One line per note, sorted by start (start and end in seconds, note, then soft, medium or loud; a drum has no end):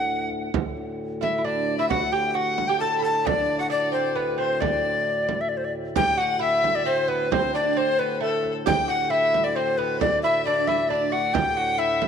0.00 0.50 D2 medium
0.00 0.51 A2 medium
0.00 0.26 F#5 medium
0.00 0.30 F#5 medium
0.31 frame drum soft
0.51 5.94 D2 medium
0.51 5.94 A2 medium
0.51 frame drum medium
0.77 frame drum soft
1.21 1.37 E4 medium
1.21 1.46 E5 medium
1.21 1.32 E5 medium
1.21 frame drum medium
1.38 1.44 E4 medium
1.45 1.79 D4 medium
1.45 1.78 D5 medium
1.45 1.80 D5 medium
1.45 frame drum soft
1.78 1.90 E4 medium
1.78 1.88 E5 medium
1.78 1.91 E5 medium
1.89 2.13 F#4 medium
1.89 2.14 F#5 loud
1.89 2.14 F#5 medium
1.89 frame drum medium
2.12 2.34 G4 medium
2.12 2.36 G5 loud
2.12 2.30 G5 medium
2.12 frame drum soft
2.30 2.38 G5 medium
2.34 2.70 F#4 medium
2.34 2.69 F#5 loud
2.34 2.71 F#5 medium
2.58 frame drum medium
2.68 2.81 G4 medium
2.68 2.79 G5 loud
2.68 2.81 G5 medium
2.80 3.01 A4 medium
2.80 3.01 A5 loud
2.80 2.97 A5 medium
2.80 frame drum soft
2.98 3.04 B5 medium
3.02 3.24 A4 medium
3.02 3.24 A5 medium
3.02 3.28 A5 loud
3.24 3.59 D4 medium
3.24 3.67 D5 medium
3.24 3.59 D5 loud
3.24 frame drum medium
3.50 frame drum soft
3.59 3.70 F#4 medium
3.59 3.70 F#5 medium
3.70 3.94 D4 medium
3.70 4.17 D5 medium
3.70 3.92 D5 loud
3.92 4.15 C4 medium
3.92 4.17 C5 medium
4.15 4.37 B3 medium
4.15 4.37 B4 medium
4.15 4.39 B4 medium
4.15 frame drum soft
4.38 4.62 C4 medium
4.38 4.59 C5 medium
4.38 4.62 C5 medium
4.60 5.37 D4 medium
4.60 5.42 D5 medium
4.60 5.37 D5 medium
4.60 frame drum medium
5.29 frame drum medium
5.41 5.50 E5 medium
5.49 5.59 D5 medium
5.57 5.66 C5 medium
5.64 5.74 D5 medium
5.95 11.33 D2 medium
5.95 11.33 A2 medium
5.95 6.19 G4 loud
5.95 6.19 G5 loud
5.95 6.22 G5 medium
5.95 frame drum medium
6.17 6.39 F#4 medium
6.17 6.40 F#5 loud
6.17 6.42 F#5 medium
6.39 6.87 E4 medium
6.39 6.88 E5 medium
6.39 6.77 E5 loud
6.64 frame drum medium
6.75 6.85 D5 loud
6.86 7.08 C4 medium
6.86 7.10 C5 medium
7.08 7.31 B3 medium
7.08 7.33 B4 loud
7.08 7.31 B4 medium
7.08 frame drum soft
7.31 7.53 C4 medium
7.31 7.56 C5 medium
7.31 7.54 C5 loud
7.31 frame drum medium
7.54 7.78 D4 medium
7.54 7.79 D5 loud
7.54 7.79 D5 medium
7.77 7.98 C4 medium
7.77 8.01 C5 loud
7.77 8.00 C5 medium
7.99 8.20 B3 medium
7.99 8.21 B4 medium
8.20 8.52 A3 medium
8.20 8.53 A4 medium
8.45 frame drum soft
8.66 8.89 G4 loud
8.66 8.87 G5 loud
8.66 8.91 G5 loud
8.66 frame drum loud
8.88 9.10 F#4 medium
8.88 9.12 F#5 loud
8.88 9.11 F#5 medium
8.88 frame drum soft
9.10 9.57 E4 medium
9.10 9.45 E5 loud
9.34 frame drum medium
9.44 9.58 D5 medium
9.44 9.57 D5 loud
9.56 9.78 C4 medium
9.56 9.79 C5 loud
9.56 9.78 C5 medium
9.78 10.01 B3 medium
9.78 10.00 B4 medium
9.78 10.01 B4 medium
9.78 frame drum soft
10.00 10.24 D4 medium
10.00 10.23 D5 medium
10.00 10.21 D5 loud
10.00 frame drum medium
10.23 10.46 E4 medium
10.23 10.44 E5 loud
10.23 10.47 E5 medium
10.45 10.68 D4 medium
10.45 10.69 D5 loud
10.45 10.71 D5 medium
10.45 frame drum soft
10.67 10.90 E4 medium
10.67 10.91 E5 medium
10.67 frame drum medium
10.89 11.12 D4 medium
10.89 11.14 D5 loud
10.89 11.36 D5 medium
10.89 frame drum soft
11.12 11.35 F#4 medium
11.12 11.35 F#5 loud
11.34 12.08 D2 medium
11.34 12.08 A2 medium
11.34 11.57 G4 medium
11.34 11.59 G5 loud
11.34 11.81 G5 medium
11.34 frame drum loud
11.57 11.78 F#4 medium
11.57 11.80 F#5 loud
11.57 frame drum soft
11.78 12.08 E4 medium
11.78 12.04 E5 loud
11.78 12.08 E5 medium
12.02 frame drum medium